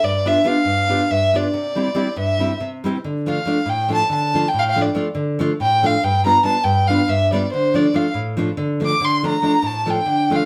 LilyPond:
<<
  \new Staff \with { instrumentName = "Violin" } { \time 7/8 \key d \minor \tempo 4 = 140 d''8 e''8 f''4. e''8 d''8~ | d''4. e''4 r4 | r8 f''4 g''8 a''8 a''8. g''16 | f''32 g''32 f''16 d''8 r4. g''8 f''8 |
g''8 bes''8 a''8 g''8 f''8 e''8 d''8 | c''8 d''8 f''8 r4. d'''8 | c'''8 bes''4 a''8 g''4 f''8 | }
  \new Staff \with { instrumentName = "Nylon-string guitar" } { \time 7/8 \key d \minor << { r8 <b d' f' g'>8 <b d' f' g'>8 r8 <b d' f' g'>8 r8 <b d' f' g'>8 | r8 <g c' e' g'>8 <g c' e' g'>8 r8 <g c' e' g'>8 r8 <g c' e' g'>8 | r8 <f a d' f'>8 <f a d' f'>8 r8 <f a d' f'>8 r8 <f a d' f'>8 | r8 <f a d' f'>8 <f a d' f'>8 r8 <f a d' f'>8 r8 <f a d' f'>8 |
r8 <g b d' f'>8 <g b d' f'>8 r8 <g b d' f'>8 r8 <g b d' f'>8 | r8 <f a d' f'>8 <f a d' f'>8 r8 <f a d' f'>8 r8 <f a d' f'>8 | r8 <f a d' f'>8 <f a d' f'>8 r8 <f a d' f'>8 r8 <f a d' f'>8 | } \\ { g,4 r8 g,4 g,4 | c4 r8 g,4 c4 | d4 r8 a,4 d4 | a,4 r8 d4 a,4 |
g,4 r8 g,4 g,4 | d4 r8 a,4 d4 | d4 r8 a,4 d4 | } >> }
>>